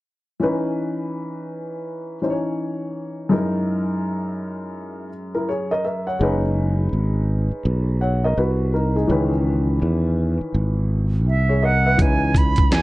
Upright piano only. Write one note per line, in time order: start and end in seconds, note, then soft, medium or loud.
0.40 2.18 E3 medium
0.40 2.19 C#4 medium
0.40 2.19 D#4 medium
0.40 2.20 B4 medium
2.22 3.31 E3 soft
2.22 3.31 C#4 soft
2.22 3.30 D#4 soft
2.22 2.31 C5 soft
2.30 3.35 C#5 medium
3.29 6.15 F#2 medium
3.29 6.16 G#3 medium
3.29 5.08 D#4 medium
3.29 5.09 E4 medium
3.29 5.09 A#4 medium
5.35 5.48 E4 soft
5.35 5.48 A#4 medium
5.49 5.70 G#4 soft
5.49 5.70 C#5 medium
5.71 5.84 A#4 soft
5.71 5.84 D#5 medium
5.85 6.06 A#4 soft
5.85 6.06 E5 medium
6.07 6.41 C#5 soft
6.07 6.41 F#5 medium
6.19 9.05 G#3 medium
6.19 9.06 C#4 medium
6.19 7.98 D#4 medium
6.19 7.99 B4 medium
8.01 8.23 C#5 soft
8.01 8.23 F#5 medium
8.24 8.37 A#4 medium
8.24 8.37 D#5 medium
8.38 8.72 F#4 soft
8.38 8.72 B4 medium
8.74 8.95 D#4 soft
8.74 8.95 A#4 medium
8.96 9.31 D#4 soft
8.96 9.30 G#4 medium
9.07 11.95 D#3 medium
9.07 11.94 E3 medium
9.07 11.94 C#4 medium
9.07 11.23 B4 medium
11.49 11.62 G#4 soft
11.49 11.62 C#5 medium
11.63 11.84 A#4 soft
11.63 11.84 D#5 medium
11.86 12.00 B4 soft
11.86 12.20 E5 medium
11.97 12.82 E3 medium
11.97 12.82 C#4 soft
11.97 12.82 D#4 medium
11.97 12.82 B4 medium